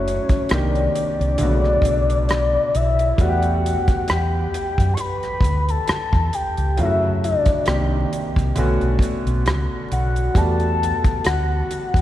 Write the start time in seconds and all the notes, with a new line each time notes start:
Already playing: F#1 F#3 A3 C#4 E4 F#4 C#5
0.08 closed hi-hat
0.29 kick, closed hi-hat
0.46 C#5, closed hi-hat
0.50 C2 D#3 A#3 C4 D4 G4 D5, cross-stick
0.75 closed hi-hat
0.95 closed hi-hat
1.20 C2, closed hi-hat
1.38 B1 C#3 D3 A3 B3, closed hi-hat
1.42 F#4
1.64 cross-stick
1.82 B1, kick, closed hi-hat
2.10 closed hi-hat
2.29 cross-stick, closed hi-hat
2.75 B1 E5, closed hi-hat
2.99 closed hi-hat
3.18 E2 G3 A3 B3 D4 F#4 F#5, kick, closed hi-hat
3.28 G4
3.42 closed hi-hat
3.66 closed hi-hat
3.88 kick, closed hi-hat
4.04 F#5, closed hi-hat
4.10 E2 G5, cross-stick
4.54 closed hi-hat
4.78 F#2, kick, closed hi-hat
4.94 C#6, closed hi-hat
5.00 B5
5.23 cross-stick, closed hi-hat
5.41 D2, kick, closed hi-hat
5.69 A5, closed hi-hat
5.88 muted fingered electric bass stroke, cross-stick, closed hi-hat
6.13 E2, kick
6.33 G5, closed hi-hat
6.57 C#2, closed hi-hat
6.76 F#2 C#3 F#3 A3 E4 F4 E5, closed hi-hat
6.85 F#4
7.24 D5, closed hi-hat
7.46 kick, closed hi-hat
7.66 C2 D#3 A#3 C4 D4 G4, cross-stick, closed hi-hat
8.13 closed hi-hat
8.36 C2, kick, closed hi-hat
8.55 B1 D3 A3 B3 C#4 F#4, closed hi-hat
8.81 B1, closed hi-hat
8.99 kick, closed hi-hat
9.27 B1, closed hi-hat
9.46 C#2, cross-stick, closed hi-hat
9.92 B1 F#5, closed hi-hat
10.16 closed hi-hat
10.34 E2 G3 A3 B3 D4 F#4 A5, kick, closed hi-hat
10.60 closed hi-hat
10.83 closed hi-hat
11.04 kick, closed hi-hat
11.24 D2 F#5, cross-stick, closed hi-hat
11.71 closed hi-hat
11.94 E2, kick, closed hi-hat